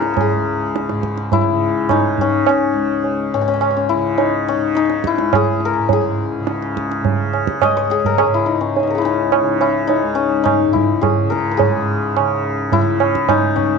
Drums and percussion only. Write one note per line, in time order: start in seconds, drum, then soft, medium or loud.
0.02 tabla te medium
0.17 tabla tin medium
0.17 tabla ge medium
0.76 tabla te medium
0.89 tabla te medium
1.03 tabla ke soft
1.17 tabla te medium
1.32 tabla tin medium
1.32 tabla ge medium
1.89 tabla na medium
1.89 tabla ge medium
2.18 tabla ge soft
2.47 tabla na medium
3.04 tabla tin medium
3.61 tabla na medium
4.18 tabla tin medium
4.75 tabla te medium
4.90 tabla te medium
5.04 tabla ke medium
5.18 tabla te medium
5.33 tabla na medium
5.33 tabla ge medium
5.60 tabla te medium
5.89 tabla tin medium
5.89 tabla ge medium
6.47 tabla te medium
6.62 tabla te soft
6.77 tabla ke medium
6.91 tabla te medium
7.05 tabla tin medium
7.05 tabla ge medium
7.33 tabla na medium
7.47 tabla ke medium
7.62 tabla na medium
7.62 tabla ge medium
7.90 tabla te medium
8.05 tabla ge soft
8.18 tabla na medium
8.77 tabla tin medium
9.32 tabla na medium
9.61 tabla na soft
9.89 tabla tin medium
10.46 tabla na medium
10.46 tabla ge medium
10.75 tabla ge medium
11.03 tabla na medium
11.03 tabla ge medium
11.32 tabla te medium
11.59 tabla tin medium
11.59 tabla ge medium
12.17 tabla na medium
12.72 tabla tin medium
12.72 tabla ge medium
13.00 tabla na medium
13.15 tabla ke medium
13.29 tabla na medium
13.29 tabla ge medium
13.57 tabla ge medium